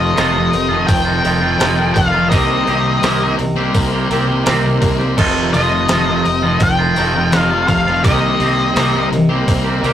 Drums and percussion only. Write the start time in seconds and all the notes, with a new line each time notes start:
0.17 snare, open hi-hat
0.53 open hi-hat
0.89 kick, open hi-hat
1.25 open hi-hat
1.60 snare, open hi-hat
1.96 kick, open hi-hat
2.32 kick, open hi-hat
2.67 open hi-hat
3.03 snare, open hi-hat
3.39 open hi-hat
3.75 kick, open hi-hat
4.11 open hi-hat
4.46 snare, open hi-hat
4.82 kick, open hi-hat
5.01 snare
5.18 kick, crash
5.54 open hi-hat
5.88 snare, open hi-hat
6.26 open hi-hat
6.60 kick, open hi-hat
6.96 open hi-hat
7.32 snare, open hi-hat
7.68 kick, open hi-hat
7.88 snare
8.04 kick, open hi-hat
8.40 open hi-hat
8.76 snare, open hi-hat
9.13 open hi-hat
9.48 kick, open hi-hat
9.84 open hi-hat